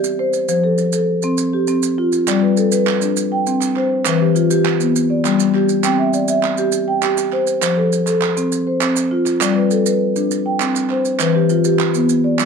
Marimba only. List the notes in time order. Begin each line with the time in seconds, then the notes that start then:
Already playing: G4 D5
0.19 C5
0.49 F3 C5
0.64 A4
0.93 A4
1.24 C4
1.53 G4
1.68 C4
1.98 F4
2.28 G3 D5
2.42 B4
2.57 A4
2.72 B4
3.02 D4
3.32 G5
3.47 C4
3.76 C5
4.06 E3 B4
4.21 G4
4.35 F4
4.50 G4
4.80 B3
5.10 D5
5.25 G3
5.55 G4
5.84 C4 G5
5.99 E5
6.14 D5
6.29 E5
6.58 G4
6.88 G5
7.03 G4
7.33 C5
7.62 F3 C5
7.77 A4
8.07 A4
8.37 C4
8.67 C5
8.81 C4
9.11 F4
9.41 G3 D5
9.56 B4
9.71 A4
9.86 B4
10.16 D4
10.46 G5
10.61 C4
10.90 C5
11.20 E3 B4
11.35 G4
11.50 F4
11.65 G4
11.95 B3
12.24 D5
12.39 G3